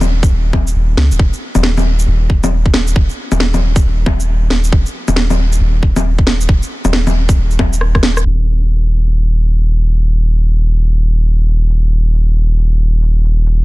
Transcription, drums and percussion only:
0.01 low bongo soft
0.01 shaker soft
0.23 kick loud
0.23 shaker medium
0.53 kick loud
0.53 low bongo medium
0.67 shaker medium
0.97 snare loud
1.11 shaker medium
1.19 kick loud
1.33 shaker soft
1.55 low bongo soft
1.55 shaker medium
1.63 snare loud
1.78 low bongo soft
1.78 shaker soft
1.99 shaker medium
2.30 kick loud
2.44 low bongo soft
2.44 shaker medium
2.66 kick medium
2.74 snare loud
2.87 shaker medium
2.96 kick loud
3.10 shaker soft
3.32 low bongo medium
3.32 shaker medium
3.40 snare loud
3.54 low bongo medium
3.54 shaker soft
3.76 kick loud
3.76 shaker medium
4.06 kick loud
4.06 low bongo medium
4.20 shaker medium
4.50 snare medium
4.64 shaker medium
4.72 kick loud
4.86 shaker soft
5.08 low bongo medium
5.08 shaker medium
5.16 snare loud
5.30 low bongo medium
5.30 shaker soft
5.52 shaker medium
5.83 kick loud
5.96 low bongo medium
5.96 shaker medium
6.19 kick medium
6.27 snare loud
6.41 shaker medium
6.49 kick loud
6.63 shaker soft
6.85 low bongo medium
6.85 shaker medium
6.93 snare loud
7.07 low bongo medium
7.07 shaker soft
7.29 kick loud
7.29 shaker medium
7.51 shaker soft
7.59 kick loud
7.59 low bongo medium
7.73 shaker medium
7.81 cross-stick medium
7.95 kick medium
7.95 cross-stick medium
8.03 snare loud
8.17 cross-stick medium
8.17 shaker medium
8.39 shaker soft
8.61 shaker soft
8.83 shaker soft
9.05 shaker soft
9.49 shaker medium
9.71 shaker soft
9.93 shaker medium
10.16 shaker soft
10.38 shaker medium
10.60 shaker soft
10.82 shaker soft
11.26 shaker medium
11.48 shaker soft
11.70 shaker medium
11.92 shaker soft
12.14 shaker soft
12.36 shaker soft
12.58 shaker soft
13.02 shaker soft
13.24 shaker soft
13.46 shaker medium

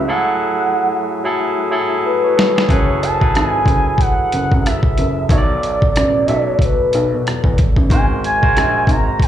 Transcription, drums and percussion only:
2.39 snare loud
2.58 snare medium
2.69 kick medium
2.69 closed hi-hat medium
3.03 closed hi-hat medium
3.21 kick medium
3.35 cross-stick loud
3.35 closed hi-hat medium
3.66 kick medium
3.66 closed hi-hat medium
3.98 kick medium
3.98 closed hi-hat medium
4.32 closed hi-hat medium
4.52 kick medium
4.66 cross-stick medium
4.66 closed hi-hat medium
4.83 kick medium
4.98 closed hi-hat medium
5.29 kick loud
5.29 closed hi-hat medium
5.63 closed hi-hat medium
5.82 kick medium
5.96 cross-stick loud
5.96 closed hi-hat medium
6.28 closed hi-hat medium
6.59 kick medium
6.59 closed hi-hat medium
6.93 closed hi-hat medium
7.27 cross-stick medium
7.27 closed hi-hat medium
7.44 kick medium
7.58 kick medium
7.58 closed hi-hat medium
7.76 kick medium
7.90 kick loud
7.90 closed hi-hat medium
8.24 closed hi-hat medium
8.43 kick medium
8.57 cross-stick loud
8.57 closed hi-hat medium
8.87 kick medium
8.87 closed hi-hat medium
9.20 kick medium
9.20 closed hi-hat medium

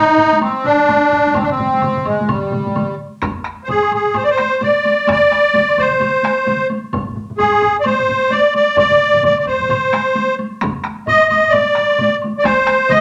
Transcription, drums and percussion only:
0.18 taiko medium
0.18 taiko low-mid loud
0.18 taiko high medium
0.33 taiko high medium
0.41 taiko high medium
0.41 high woodblock medium
0.64 taiko low-mid medium
0.64 taiko high medium
0.80 taiko high medium
0.88 taiko low-mid medium
0.88 taiko high medium
0.88 high woodblock soft
1.12 taiko medium
1.12 taiko low-mid medium
1.27 taiko high medium
1.35 taiko loud
1.35 taiko low-mid medium
1.35 taiko mid medium
1.35 taiko high medium
1.35 high woodblock medium
1.49 taiko low-mid medium
1.49 taiko mid medium
1.59 taiko low-mid medium
1.59 taiko mid medium
1.59 taiko high medium
1.74 taiko high medium
1.82 taiko low-mid medium
1.82 taiko mid medium
1.82 taiko high medium
1.82 high woodblock soft
1.95 taiko low-mid medium
1.95 taiko mid medium
2.05 taiko low-mid medium
2.05 taiko mid medium
2.05 taiko high medium
2.05 high woodblock soft
2.19 taiko low-mid medium
2.19 taiko mid medium
2.19 taiko high medium
2.28 taiko medium
2.28 taiko low-mid loud
2.28 taiko mid medium
2.28 taiko high medium
2.28 high woodblock medium
2.52 taiko low-mid loud
2.52 taiko mid medium
2.52 taiko high medium
2.66 taiko low-mid medium
2.66 taiko mid medium
2.66 taiko high medium
2.75 taiko low-mid medium
2.75 taiko mid medium
2.75 taiko high medium
2.75 high woodblock soft
3.22 taiko rim medium
3.22 taiko medium
3.22 taiko high medium
3.22 high woodblock soft
3.37 taiko high soft
3.45 taiko rim medium
3.59 taiko high soft
3.68 taiko medium
3.68 taiko low-mid medium
3.68 taiko high medium
3.68 high woodblock soft
3.82 taiko high soft
3.82 high woodblock soft
3.91 taiko low-mid medium
3.91 taiko high soft
3.91 high woodblock soft
4.05 taiko low-mid soft
4.14 taiko low-mid medium
4.14 taiko high medium
4.14 high woodblock soft
4.29 taiko high soft
4.38 taiko rim medium
4.38 taiko high medium
4.51 high woodblock soft
4.61 taiko low-mid medium
4.61 taiko high medium
4.61 high woodblock soft
4.84 taiko high medium
4.84 high woodblock soft
4.99 taiko high soft
5.07 taiko rim medium
5.07 taiko medium
5.07 taiko high medium
5.07 high woodblock soft
5.21 taiko high soft
5.31 taiko rim medium
5.31 taiko high soft
5.45 taiko high soft
5.54 taiko medium
5.54 taiko mid medium
5.54 taiko high medium
5.54 high woodblock soft
5.69 high woodblock soft
5.77 taiko medium
5.77 taiko mid medium
5.77 taiko high medium
5.77 high woodblock soft
5.92 taiko mid medium
6.00 taiko mid medium
6.00 taiko high medium
6.00 high woodblock soft
6.15 taiko high soft
6.23 taiko rim medium
6.23 taiko high medium
6.38 taiko high soft
6.38 high woodblock soft
6.46 taiko mid medium
6.46 taiko high medium
6.46 high woodblock soft
6.61 taiko high soft
6.70 taiko high medium
6.70 high woodblock soft
6.84 taiko high soft
6.93 taiko medium
6.93 taiko low-mid medium
6.93 taiko high medium
6.93 high woodblock soft
7.07 taiko low-mid medium
7.07 taiko high soft
7.17 taiko low-mid medium
7.17 taiko high soft
7.30 taiko low-mid medium
7.30 taiko high soft
7.38 taiko medium
7.38 taiko low-mid medium
7.38 taiko high medium
7.38 high woodblock soft
7.52 taiko low-mid medium
7.52 taiko high soft
7.52 high woodblock soft
7.61 taiko medium
7.61 taiko low-mid medium
7.61 high woodblock soft
7.84 taiko low-mid medium
7.84 taiko high medium
7.84 high woodblock medium
7.99 taiko low-mid medium
8.08 taiko low-mid medium
8.08 taiko high medium
8.21 taiko high soft
8.21 high woodblock soft
8.30 taiko high medium
8.30 high woodblock soft
8.54 taiko high medium
8.54 high woodblock soft
8.69 taiko high soft
8.77 taiko loud
8.77 taiko high medium
8.77 high woodblock medium
8.91 taiko low-mid medium
8.91 taiko mid medium
9.02 taiko high soft
9.13 taiko low-mid medium
9.13 taiko mid medium
9.13 taiko high soft
9.23 taiko medium
9.23 taiko low-mid loud
9.23 taiko mid medium
9.23 taiko high medium
9.23 high woodblock soft
9.37 high woodblock soft
9.46 taiko medium
9.46 taiko high soft
9.46 high woodblock soft
9.60 taiko low-mid medium
9.60 taiko mid medium
9.60 taiko high soft
9.69 taiko low-mid loud
9.69 taiko mid medium
9.69 taiko high medium
9.69 high woodblock medium
9.93 taiko rim medium
9.93 taiko high medium
10.07 taiko high soft
10.07 high woodblock soft
10.15 taiko high medium
10.15 high woodblock soft
10.29 taiko high soft
10.39 taiko high medium
10.39 high woodblock soft
10.52 taiko high soft
10.61 taiko rim medium
10.61 taiko loud
10.61 taiko high medium
10.61 high woodblock soft
10.75 taiko high soft
10.84 taiko rim medium
10.84 taiko high soft
10.99 taiko high soft
11.07 taiko medium
11.07 taiko low-mid loud
11.07 taiko high medium
11.07 high woodblock soft
11.21 high woodblock soft
11.30 taiko medium
11.30 taiko low-mid medium
11.30 taiko high medium
11.30 high woodblock soft
11.44 taiko low-mid medium
11.52 taiko low-mid loud
11.52 taiko high medium
11.52 high woodblock soft
11.69 taiko high soft
11.75 taiko rim medium
11.75 taiko high medium
11.89 taiko high soft
11.89 high woodblock soft
11.98 taiko low-mid medium
11.98 taiko high medium
11.98 high woodblock soft
12.22 taiko high medium
12.22 high woodblock soft
12.39 taiko high soft
12.44 taiko rim medium
12.44 taiko medium
12.44 taiko high medium
12.44 high woodblock soft
12.67 taiko rim medium
12.67 taiko high medium
12.83 taiko high soft
12.89 taiko medium
12.89 taiko mid loud
12.89 taiko high medium
12.89 high woodblock soft

